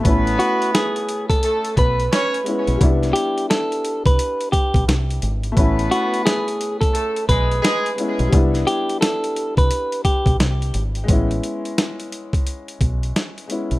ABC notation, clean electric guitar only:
X:1
M:4/4
L:1/16
Q:"Swing 16ths" 1/4=87
K:A
V:1 name="Clean electric guitar"
z2 F2 G3 A3 B6 | z2 =G2 A3 B3 G2 z4 | z2 F2 G3 A3 B6 | z2 =G2 A3 B3 G2 z4 |
z16 |]